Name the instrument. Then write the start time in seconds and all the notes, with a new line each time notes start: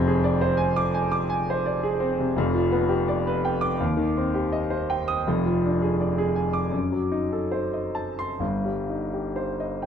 grand piano
Already playing: F1 F2 C3 C4
0.08 G#4
0.24 D5
0.41 C5
0.57 G#5
0.76 D6
0.94 G#5
1.12 D6
1.30 G#5
1.50 C5
1.66 D5
1.83 G#4
2.00 C4
2.18 C3
2.37 F1 F2
2.54 F3
2.72 B3
2.89 G4
3.08 D5
3.27 B4
3.45 G5
3.61 D6
3.80 D#2
3.97 D#3
4.17 C4
4.35 G4
4.52 D#5
4.70 C5
4.90 G5
5.08 D#6
5.27 F1 F2
5.46 F3
5.64 D4
5.82 G#4
6.01 D5
6.18 G#4
6.36 G#5
6.53 D6
6.71 F#2
6.92 F#3
7.12 D#4
7.32 A4
7.51 C5
7.73 D#5
7.95 A5
8.19 C6
8.39 G1 G2
8.65 G3
8.90 D#4
9.13 G4
9.36 C5
9.60 D#5
9.82 G5